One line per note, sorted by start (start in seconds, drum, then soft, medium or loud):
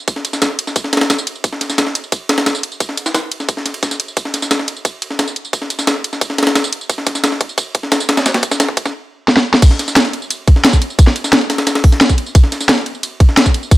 0.08 kick loud
0.08 closed hi-hat medium
0.08 ride medium
0.08 tambourine soft
0.16 snare soft
0.25 closed hi-hat medium
0.25 ride medium
0.25 tambourine soft
0.33 snare medium
0.33 tambourine medium
0.42 kick loud
0.42 snare loud
0.42 closed hi-hat medium
0.42 ride medium
0.42 tambourine soft
0.59 closed hi-hat loud
0.59 ride medium
0.67 snare soft
0.67 tambourine soft
0.76 kick loud
0.76 closed hi-hat medium
0.76 ride medium
0.76 tambourine medium
0.84 snare soft
0.93 snare medium
0.93 closed hi-hat medium
0.93 ride medium
0.97 snare medium
0.97 ride medium
1.01 snare loud
1.01 ride medium
1.10 kick medium
1.10 snare loud
1.10 closed hi-hat medium
1.10 ride medium
1.10 tambourine soft
1.18 tambourine medium
1.27 closed hi-hat loud
1.27 ride medium
1.35 tambourine soft
1.44 kick loud
1.44 closed hi-hat medium
1.44 ride medium
1.44 tambourine soft
1.53 snare soft
1.61 snare soft
1.61 closed hi-hat medium
1.61 ride medium
1.61 tambourine soft
1.70 snare soft
1.70 tambourine medium
1.78 kick loud
1.78 snare loud
1.78 closed hi-hat medium
1.78 ride medium
1.78 tambourine soft
1.87 snare medium
1.95 closed hi-hat medium
1.95 ride medium
2.04 tambourine soft
2.12 kick loud
2.12 closed hi-hat medium
2.12 ride medium
2.12 tambourine soft
2.29 snare loud
2.29 closed hi-hat medium
2.29 ride medium
2.38 snare loud
2.38 ride medium
2.46 kick loud
2.46 snare loud
2.46 closed hi-hat medium
2.46 ride medium
2.46 tambourine soft
2.55 tambourine medium
2.63 closed hi-hat medium
2.63 ride medium
2.72 tambourine soft
2.80 kick loud
2.80 closed hi-hat medium
2.80 ride medium
2.80 tambourine soft
2.89 snare soft
2.97 closed hi-hat medium
2.97 ride medium
2.97 tambourine soft
3.06 snare medium
3.06 tambourine medium
3.14 kick loud
3.14 snare loud
3.14 closed hi-hat medium
3.14 ride medium
3.14 tambourine soft
3.32 closed hi-hat medium
3.32 ride medium
3.40 snare soft
3.40 tambourine soft
3.49 kick loud
3.49 closed hi-hat medium
3.49 ride medium
3.49 tambourine soft
3.57 snare soft
3.66 snare soft
3.66 closed hi-hat medium
3.66 ride medium
3.74 ride medium
3.83 kick loud
3.83 snare soft
3.83 closed hi-hat medium
3.83 tambourine soft
3.91 snare soft
3.91 ride medium
3.91 tambourine medium
4.00 closed hi-hat medium
4.00 ride medium
4.08 tambourine soft
4.17 kick loud
4.17 closed hi-hat medium
4.17 ride medium
4.17 tambourine soft
4.25 snare soft
4.34 snare soft
4.34 closed hi-hat medium
4.34 ride medium
4.34 tambourine soft
4.42 snare soft
4.42 tambourine medium
4.51 kick loud
4.51 snare loud
4.51 closed hi-hat medium
4.51 ride medium
4.51 tambourine soft
4.59 snare medium
4.68 closed hi-hat medium
4.68 ride medium
4.76 tambourine soft
4.85 kick loud
4.85 closed hi-hat medium
4.85 ride medium
4.85 tambourine medium
5.02 closed hi-hat medium
5.02 ride medium
5.11 snare soft
5.19 kick loud
5.19 snare loud
5.19 closed hi-hat medium
5.19 ride medium
5.19 tambourine soft
5.28 tambourine medium
5.36 closed hi-hat medium
5.45 tambourine soft
5.53 kick loud
5.53 closed hi-hat medium
5.53 ride medium
5.53 tambourine soft
5.62 snare soft
5.70 closed hi-hat medium
5.70 ride medium
5.70 tambourine soft
5.79 snare medium
5.79 tambourine medium
5.87 kick loud
5.87 snare loud
5.87 closed hi-hat medium
5.87 ride medium
5.87 tambourine soft
6.04 closed hi-hat medium
6.04 ride medium
6.13 snare soft
6.13 tambourine soft
6.21 kick loud
6.21 closed hi-hat medium
6.21 ride medium
6.21 tambourine medium
6.30 snare soft
6.38 snare medium
6.38 closed hi-hat medium
6.38 ride medium
6.43 snare loud
6.43 ride medium
6.47 snare loud
6.47 ride medium
6.55 kick loud
6.55 snare loud
6.55 closed hi-hat medium
6.55 ride loud
6.55 tambourine soft
6.64 tambourine medium
6.72 closed hi-hat medium
6.72 ride medium
6.81 tambourine soft
6.90 kick loud
6.90 closed hi-hat medium
6.90 ride medium
6.90 tambourine soft
6.98 snare soft
7.07 kick loud
7.07 snare soft
7.07 closed hi-hat medium
7.07 ride medium
7.07 tambourine soft
7.15 snare soft
7.15 tambourine medium
7.24 kick loud
7.24 snare loud
7.24 closed hi-hat medium
7.24 ride medium
7.24 tambourine medium
7.32 snare medium
7.41 kick loud
7.41 closed hi-hat medium
7.41 ride medium
7.49 tambourine soft
7.58 kick loud
7.58 closed hi-hat medium
7.58 ride medium
7.58 tambourine medium
7.75 kick loud
7.75 closed hi-hat medium
7.75 ride medium
7.83 snare soft
7.92 kick loud
7.92 snare loud
7.92 closed hi-hat medium
7.92 ride medium
7.92 tambourine soft
8.00 tambourine medium
8.09 kick loud
8.09 snare loud
8.09 closed hi-hat medium
8.09 ride medium
8.17 snare loud
8.17 ride medium
8.17 tambourine soft
8.26 kick loud
8.26 snare loud
8.26 closed hi-hat medium
8.26 ride medium
8.26 tambourine medium
8.34 kick loud
8.34 snare loud
8.34 ride medium
8.43 kick loud
8.43 closed hi-hat medium
8.43 ride medium
8.43 tambourine soft
8.51 kick medium
8.51 snare medium
8.51 tambourine medium
8.60 kick loud
8.60 snare loud
8.60 closed hi-hat medium
8.60 ride medium
8.60 tambourine medium
8.69 kick loud
8.77 kick loud
8.77 closed hi-hat loud
8.77 ride medium
8.86 kick medium
8.86 snare soft
8.86 tambourine soft
9.28 snare medium
9.37 snare medium
9.54 snare medium
9.62 kick loud
9.62 closed hi-hat loud
9.62 crash loud
9.62 ride medium
9.62 tambourine medium
9.71 snare soft
9.79 snare soft
9.79 closed hi-hat medium
9.79 ride medium
9.79 tambourine soft
9.88 snare soft
9.88 tambourine medium
9.96 snare loud
9.96 closed hi-hat loud
9.96 ride medium
9.96 tambourine medium
10.05 snare medium
10.05 closed hi-hat soft
10.13 closed hi-hat medium
10.13 ride medium
10.22 tambourine soft
10.30 closed hi-hat loud
10.30 ride medium
10.30 tambourine medium
10.47 kick loud
10.47 closed hi-hat medium
10.47 ride medium
10.56 snare soft
10.65 snare loud
10.65 closed hi-hat loud
10.65 ride medium
10.65 tambourine medium
10.73 kick medium
10.73 closed hi-hat soft
10.73 tambourine medium
10.82 closed hi-hat medium
10.82 ride medium
10.90 tambourine soft
10.99 kick loud
10.99 closed hi-hat loud
10.99 ride medium
10.99 tambourine medium
11.07 snare soft
11.16 closed hi-hat medium
11.16 ride medium
11.16 tambourine soft
11.24 snare medium
11.24 tambourine medium
11.33 snare loud
11.33 closed hi-hat loud
11.33 ride medium
11.41 closed hi-hat soft
11.50 snare loud
11.50 open hi-hat medium
11.50 ride medium
11.58 snare loud
11.58 ride medium
11.58 tambourine soft
11.67 snare loud
11.67 closed hi-hat loud
11.67 ride medium
11.67 tambourine medium
11.75 snare loud
11.75 ride medium
11.84 kick loud
11.84 closed hi-hat medium
11.84 open hi-hat medium
11.92 snare soft
11.92 closed hi-hat soft
12.01 snare loud
12.01 closed hi-hat loud
12.01 tambourine medium
12.09 kick medium
12.09 closed hi-hat soft
12.09 tambourine medium
12.18 closed hi-hat medium
12.18 ride medium
12.26 tambourine soft
12.35 kick loud
12.35 closed hi-hat medium
12.35 ride medium
12.35 tambourine soft
12.44 snare soft
12.52 snare soft
12.52 closed hi-hat medium
12.52 ride medium
12.52 tambourine soft
12.61 snare soft
12.61 tambourine medium
12.69 snare loud
12.69 closed hi-hat loud
12.69 ride medium
12.69 tambourine soft
12.78 snare medium
12.78 closed hi-hat soft
12.86 closed hi-hat medium
12.86 ride medium
12.95 tambourine soft
13.03 closed hi-hat loud
13.03 ride medium
13.03 tambourine soft
13.20 kick loud
13.20 closed hi-hat medium
13.20 ride medium
13.29 snare soft
13.37 snare loud
13.37 closed hi-hat medium
13.37 ride medium
13.37 tambourine soft
13.46 kick medium
13.46 closed hi-hat soft
13.46 tambourine medium
13.54 closed hi-hat medium
13.54 ride medium
13.63 tambourine soft
13.71 kick loud
13.71 closed hi-hat medium
13.71 ride medium
13.71 tambourine soft